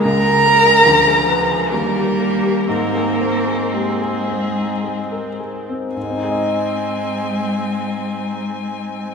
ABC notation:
X:1
M:3/4
L:1/16
Q:1/4=56
K:Ab
V:1 name="Violin"
b8 B4 | B4 A6 z2 | a12 |]
V:2 name="Grand piano"
D,, A B A =D,, A =B A E,, G _B G | A,, A c A G A c E A B A C | [A,,A,CEAe]12 |]
V:3 name="Cello"
B8 B,4 | B,4 A,6 z2 | A,12 |]
V:4 name="Viola" clef=bass
A,4 F,4 G,4 | C8- C3 z | C12 |]